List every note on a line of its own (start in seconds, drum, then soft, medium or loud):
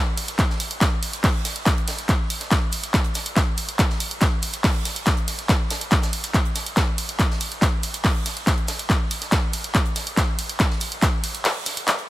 0.17 open hi-hat medium
0.17 ride medium
0.17 shaker medium
0.28 closed hi-hat medium
0.39 kick loud
0.39 clap loud
0.39 closed hi-hat medium
0.39 shaker medium
0.50 snare medium
0.60 open hi-hat loud
0.60 ride medium
0.60 shaker medium
0.71 closed hi-hat medium
0.81 kick loud
0.81 snare loud
0.81 clap loud
0.81 closed hi-hat medium
0.81 shaker medium
1.03 open hi-hat medium
1.03 ride medium
1.03 shaker medium
1.13 closed hi-hat medium
1.13 closed hi-hat soft
1.24 kick loud
1.24 clap loud
1.24 closed hi-hat medium
1.24 open hi-hat medium
1.45 snare soft
1.45 open hi-hat loud
1.45 ride medium
1.45 shaker medium
1.56 closed hi-hat medium
1.66 kick loud
1.66 snare loud
1.66 clap loud
1.66 closed hi-hat medium
1.66 shaker loud
1.78 closed hi-hat soft
1.88 snare loud
1.88 open hi-hat medium
1.88 ride medium
1.88 shaker medium
1.99 closed hi-hat medium
2.09 kick loud
2.09 clap loud
2.09 closed hi-hat medium
2.09 shaker medium
2.30 open hi-hat loud
2.30 ride medium
2.30 shaker medium
2.40 snare soft
2.40 closed hi-hat medium
2.51 kick loud
2.51 snare loud
2.51 clap loud
2.51 closed hi-hat medium
2.51 shaker medium
2.72 open hi-hat loud
2.72 ride medium
2.72 shaker medium
2.84 closed hi-hat medium
2.94 kick loud
2.94 clap loud
2.94 closed hi-hat medium
2.94 shaker medium
3.04 closed hi-hat soft
3.15 snare medium
3.15 open hi-hat loud
3.15 ride medium
3.15 shaker medium
3.26 closed hi-hat medium
3.36 kick loud
3.36 snare loud
3.36 clap loud
3.36 closed hi-hat medium
3.36 shaker medium
3.57 open hi-hat loud
3.57 ride medium
3.57 shaker medium
3.69 closed hi-hat medium
3.79 kick loud
3.79 clap loud
3.79 closed hi-hat medium
3.79 shaker medium
3.90 snare medium
4.00 open hi-hat loud
4.00 ride medium
4.00 shaker medium
4.11 closed hi-hat medium
4.21 kick loud
4.21 snare loud
4.21 clap loud
4.21 closed hi-hat medium
4.21 shaker medium
4.43 open hi-hat loud
4.43 ride medium
4.43 shaker medium
4.53 closed hi-hat soft
4.53 closed hi-hat medium
4.64 kick loud
4.64 clap loud
4.64 closed hi-hat medium
4.64 open hi-hat medium
4.85 snare soft
4.85 open hi-hat loud
4.85 ride medium
4.85 shaker medium
4.96 closed hi-hat medium
5.06 kick loud
5.06 snare loud
5.06 clap loud
5.06 closed hi-hat medium
5.06 shaker loud
5.17 closed hi-hat soft
5.28 snare soft
5.28 open hi-hat loud
5.28 ride medium
5.28 shaker medium
5.39 closed hi-hat medium
5.49 kick loud
5.49 snare loud
5.49 clap loud
5.49 closed hi-hat medium
5.49 shaker medium
5.71 snare loud
5.71 open hi-hat loud
5.71 ride medium
5.71 shaker medium
5.81 closed hi-hat medium
5.91 kick loud
5.91 clap loud
5.91 closed hi-hat medium
5.91 shaker medium
6.02 snare medium
6.02 shaker medium
6.13 open hi-hat loud
6.13 ride medium
6.24 closed hi-hat medium
6.24 shaker medium
6.34 kick loud
6.34 clap loud
6.34 closed hi-hat medium
6.34 shaker medium
6.45 closed hi-hat soft
6.55 snare medium
6.55 open hi-hat loud
6.55 ride medium
6.55 shaker medium
6.66 closed hi-hat medium
6.77 kick loud
6.77 snare loud
6.77 clap loud
6.77 closed hi-hat medium
6.77 shaker medium
6.98 open hi-hat loud
6.98 ride medium
6.98 shaker medium
7.09 closed hi-hat medium
7.19 kick loud
7.19 clap loud
7.19 closed hi-hat medium
7.19 shaker medium
7.31 snare medium
7.40 open hi-hat loud
7.40 ride medium
7.40 shaker medium
7.52 closed hi-hat medium
7.61 kick loud
7.61 snare loud
7.61 clap loud
7.61 closed hi-hat medium
7.61 shaker medium
7.83 open hi-hat loud
7.83 ride medium
7.83 shaker medium
7.94 closed hi-hat medium
7.94 closed hi-hat soft
8.04 kick loud
8.04 clap loud
8.04 closed hi-hat medium
8.04 open hi-hat medium
8.26 snare soft
8.26 open hi-hat loud
8.26 ride medium
8.26 shaker medium
8.37 closed hi-hat medium
8.47 kick loud
8.47 snare loud
8.47 clap loud
8.47 closed hi-hat medium
8.47 shaker medium
8.58 closed hi-hat soft
8.68 snare loud
8.68 open hi-hat medium
8.68 ride medium
8.68 shaker medium
8.79 closed hi-hat medium
8.90 kick loud
8.90 clap loud
8.90 closed hi-hat medium
8.90 shaker medium
9.11 open hi-hat loud
9.11 ride medium
9.11 shaker medium
9.22 snare soft
9.22 closed hi-hat medium
9.32 kick loud
9.32 snare loud
9.32 clap loud
9.32 closed hi-hat medium
9.32 shaker medium
9.53 open hi-hat medium
9.53 ride medium
9.53 shaker medium
9.64 closed hi-hat medium
9.75 kick loud
9.75 clap loud
9.75 closed hi-hat medium
9.75 shaker medium
9.86 closed hi-hat soft
9.96 snare medium
9.96 open hi-hat loud
9.96 ride medium
9.96 shaker medium
10.07 closed hi-hat medium
10.17 kick loud
10.17 snare loud
10.17 clap loud
10.17 closed hi-hat medium
10.17 shaker loud
10.39 open hi-hat medium
10.39 ride medium
10.39 shaker medium
10.49 closed hi-hat medium
10.59 kick loud
10.59 clap loud
10.59 closed hi-hat medium
10.59 shaker medium
10.70 snare medium
10.81 open hi-hat loud
10.81 ride medium
10.81 shaker medium
10.92 closed hi-hat medium
11.01 kick loud
11.01 snare loud
11.01 clap loud
11.01 closed hi-hat medium
11.01 shaker loud
11.24 open hi-hat medium
11.24 ride medium
11.24 shaker medium
11.35 closed hi-hat medium
11.35 closed hi-hat soft
11.45 clap loud
11.45 closed hi-hat medium
11.45 open hi-hat medium
11.66 snare soft
11.66 open hi-hat loud
11.66 ride medium
11.66 shaker medium
11.77 closed hi-hat medium
11.87 snare loud
11.87 clap loud
11.87 closed hi-hat medium
11.87 shaker medium
11.99 closed hi-hat soft